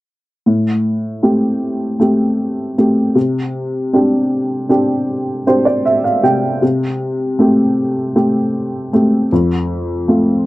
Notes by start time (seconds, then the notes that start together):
0.46 A2
1.23 A3 C4 G4
2.00 A3 C4 G4
2.78 A3 C4 G4
3.15 C3
3.93 C4 D4 G4
4.69 C4 D4 G4
5.47 C4 D4 G4 C5
5.65 D5
5.85 E5
6.04 F5
6.23 C3 G5
6.62 C3
7.39 A3 C4 G4
8.16 A3 C4 G4
8.93 A3 C4 G4
9.32 F2
10.08 A3 C4 F4